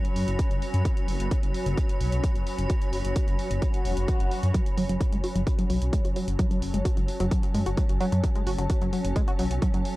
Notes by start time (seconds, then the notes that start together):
Already playing: F#3 C#4 F#4 C#5 B5
0.05 closed hi-hat
0.16 F#2, open hi-hat
0.28 F#1, closed hi-hat
0.39 kick, closed hi-hat
0.51 F#1, closed hi-hat
0.62 open hi-hat
0.74 F#2, closed hi-hat
0.85 kick, closed hi-hat
0.97 closed hi-hat
1.08 F#1, open hi-hat
1.20 F#1, closed hi-hat
1.31 kick, closed hi-hat
1.43 F#1, closed hi-hat
1.54 open hi-hat
1.66 F#1, closed hi-hat
1.77 kick, closed hi-hat
1.89 closed hi-hat
2.01 B1, open hi-hat
2.12 B1, closed hi-hat
2.24 kick, closed hi-hat
2.35 F#1, closed hi-hat
2.47 open hi-hat
2.58 F#1, closed hi-hat
2.70 kick, closed hi-hat
2.82 closed hi-hat
2.93 F#1, open hi-hat
3.05 F#1, closed hi-hat
3.16 kick, closed hi-hat
3.28 F#1, closed hi-hat
3.39 open hi-hat
3.51 F#1, closed hi-hat
3.62 kick, closed hi-hat, swell
3.74 closed hi-hat
3.85 E1, open hi-hat
3.97 F#1, closed hi-hat
4.08 kick, closed hi-hat
4.20 F#1, closed hi-hat
4.31 open hi-hat
4.43 F#2, closed hi-hat
4.54 F#3 C#4, kick, closed hi-hat
4.66 closed hi-hat
4.77 F#1 F#3, open hi-hat
4.89 F#1 F#3, closed hi-hat
5.01 kick, closed hi-hat
5.12 F#1 G#3, closed hi-hat
5.21 F#4 A5, open hi-hat
5.35 F#1 F#3, closed hi-hat
5.47 kick, closed hi-hat
5.59 F#3, closed hi-hat
5.70 B1 F#3, open hi-hat
5.82 B1, closed hi-hat
5.93 G#3, kick, closed hi-hat
6.05 F#1 F#4, closed hi-hat
6.16 F#3, open hi-hat
6.28 F#1, closed hi-hat
6.39 F#3, kick, closed hi-hat
6.51 F#3, closed hi-hat
6.62 F#1, open hi-hat
6.74 F#1 G#3, closed hi-hat
6.85 F#4, kick, closed hi-hat
6.97 F#1 F#3, closed hi-hat
7.08 open hi-hat
7.20 F#1 F#3, closed hi-hat
7.31 F#3, kick, closed hi-hat
7.43 closed hi-hat
7.54 F#2 G#3, open hi-hat
7.66 F#1 F#4, closed hi-hat
7.77 F#3, kick, closed hi-hat
7.89 F#1, closed hi-hat
8.01 F#3, open hi-hat
8.12 F#2 F#3, closed hi-hat
8.24 kick, closed hi-hat
8.35 G#3, closed hi-hat
8.47 F#1 F#4, open hi-hat
8.59 F#1 F#3, closed hi-hat
8.70 kick, closed hi-hat
8.82 F#1 F#3, closed hi-hat
8.93 F#3, open hi-hat
9.05 F#1, closed hi-hat
9.16 G#3, kick, closed hi-hat
9.28 F#4, closed hi-hat
9.39 B1 F#3, open hi-hat
9.51 B1, closed hi-hat
9.62 F#3, kick, closed hi-hat
9.74 F#1 F#3, closed hi-hat
9.85 open hi-hat